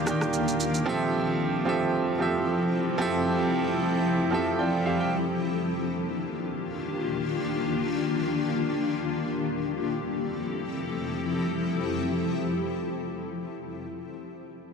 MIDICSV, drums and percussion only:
0, 0, Header, 1, 2, 480
1, 0, Start_track
1, 0, Key_signature, -1, "major"
1, 0, Tempo, 500000
1, 14145, End_track
2, 0, Start_track
2, 0, Title_t, "Drums"
2, 66, Note_on_c, 9, 37, 88
2, 67, Note_on_c, 9, 82, 91
2, 162, Note_off_c, 9, 37, 0
2, 163, Note_off_c, 9, 82, 0
2, 205, Note_on_c, 9, 37, 79
2, 211, Note_on_c, 9, 82, 42
2, 301, Note_off_c, 9, 37, 0
2, 307, Note_off_c, 9, 82, 0
2, 321, Note_on_c, 9, 82, 75
2, 417, Note_off_c, 9, 82, 0
2, 463, Note_on_c, 9, 82, 57
2, 559, Note_off_c, 9, 82, 0
2, 577, Note_on_c, 9, 82, 83
2, 673, Note_off_c, 9, 82, 0
2, 714, Note_on_c, 9, 82, 50
2, 810, Note_off_c, 9, 82, 0
2, 14145, End_track
0, 0, End_of_file